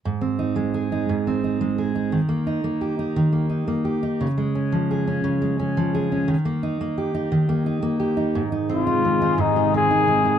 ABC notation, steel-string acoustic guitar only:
X:1
M:6/8
L:1/16
Q:3/8=58
K:Ab
V:1 name="Steel-string acoustic guitar"
A,, C E A, A E A,, C E A, A E | E, B, E B, G E E, B, E B, G E | D, A, D F, A D D, A, D F, A D | E, B, E B, G E E, B, E B, G E |
A,, E C E C E A,, E C E C E |]